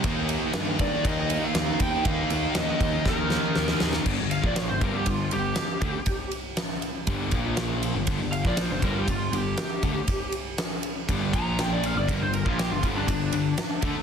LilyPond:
<<
  \new Staff \with { instrumentName = "Lead electric guitar" } { \time 4/4 \key g \minor \tempo 4 = 120 r4. d''8 ees''8. f''8. g''8 | f''4 ees''4 bes'4. r8 | r8 f''16 d''16 cis''16 c''16 bes'16 g'16 f'8 g'4.~ | g'8 r2. r8 |
r8 f''16 d''16 c''16 c''16 bes'16 g'16 f'8 g'4.~ | g'8 r2 bes''8 g''16 d''16 f''16 d''16 | bes'16 c''16 bes'16 f'16 g'16 f'16 r16 d'16 d'2 | }
  \new Staff \with { instrumentName = "Distorted electric guitar" } { \clef bass \time 4/4 \key g \minor <ees bes ees'>1 | <ees bes ees'>1 | <g, d>16 <g, d>8 <bes, f bes>8 <g, d>16 <g, d g>8 <g, d>8 <g, d>8 r8 <d a>16 r16 | r2 <g, d g>8 <bes, f bes>4~ <bes, f bes>16 <g, d>16 |
<g, d>16 <g, d>8 <bes, f bes>8 <g, d>16 <g, d g>8 <g, d>8 <g, d>8 r8 <d a>16 r16 | r2 <g, d g>8 <bes, f bes>4~ <bes, f bes>16 <g, d>16 | <g, d>16 <g, d>8 <bes, f bes>8 <g, d>16 <g, d g>8 <g, d>8 <g, d>8 r8 <d a>16 r16 | }
  \new Staff \with { instrumentName = "Distorted electric guitar" } { \clef bass \time 4/4 \key g \minor <ees bes ees'>1 | <ees bes ees'>1 | r1 | r1 |
r1 | r1 | <g, d>16 <g, d>8 <bes, f bes>8 <g, d>16 <g, d g>8 <g, d>8 <g, d>8 r8 <d a>16 r16 | }
  \new Staff \with { instrumentName = "Overdriven electric guitar" } { \clef bass \time 4/4 \key g \minor <ees bes ees'>2~ <ees bes ees'>8 <ees bes ees'>8 <ees bes ees'>4 | <ees bes ees'>2~ <ees bes ees'>8 <ees bes ees'>8 <ees bes ees'>4 | <g, d>16 <g, d>8 <bes, f bes>8 <g, d>16 <g, d g>8 <g, d>8 <g, d>8 r8 <d a>16 r16 | r2 <g, d g>8 <bes, f bes>4~ <bes, f bes>16 <g, d>16 |
<g, d>16 <g, d>8 <bes, f bes>8 <g, d>16 <g, d g>8 <g, d>8 <g, d>8 r8 <d a>16 r16 | r2 <g, d g>8 <bes, f bes>4~ <bes, f bes>16 <g, d>16 | <g, d>16 <g, d>8 <bes, f bes>8 <g, d>16 <g, d g>8 <g, d>8 <g, d>8 r8 <d a>16 r16 | }
  \new Staff \with { instrumentName = "Picked electric bass" } { \clef bass \time 4/4 \key g \minor ees,4 g,4 ees,4 ees,8 ees,8 | ees,8 ees,8 ees,8 ees,8 ees,4 ees,8 ees,8 | g,,16 g,,8 bes,,8 g,,16 g,,8 g,,8 g,,8 r8 d,16 r16 | r2 g,,8 bes,,4~ bes,,16 g,,16 |
g,,16 g,,8 bes,,8 g,,16 g,,8 g,,8 g,,8 r8 d,16 r16 | r2 g,,8 bes,,4~ bes,,16 g,,16 | g,,16 g,,8 bes,,8 g,,16 g,,8 g,,8 g,,8 r8 d,16 r16 | }
  \new DrumStaff \with { instrumentName = "Drums" } \drummode { \time 4/4 <bd cymr>8 cymr8 <cymr sn>8 <bd cymr>8 <bd cymr>8 cymr8 <cymr sn>8 <bd cymr>8 | <bd cymr>8 cymr8 <cymr sn>8 <bd cymr>8 <bd sn>8 sn8 sn16 sn16 sn16 sn16 | <cymc bd>8 cymr16 bd16 <cymr sn>8 <bd cymr>8 <bd cymr>8 cymr8 <cymr sn>8 <bd cymr>8 | <bd cymr>8 cymr8 <cymr sn>16 sn16 cymr8 <bd cymr>8 <bd cymr>8 <cymr sn>8 cymr8 |
<bd cymr>8 cymr16 <bd sn>16 <cymr sn>8 <bd cymr>8 <bd cymr>8 cymr8 <cymr sn>8 <bd cymr>8 | <bd cymr>8 cymr8 <cymr sn>8 cymr8 <bd cymr>8 <bd cymr>8 <cymr sn>8 cymr8 | <bd cymr>8 cymr16 bd16 <cymr sn>8 <bd cymr>8 <bd cymr>8 cymr8 <cymr sn>8 <bd cymr>8 | }
>>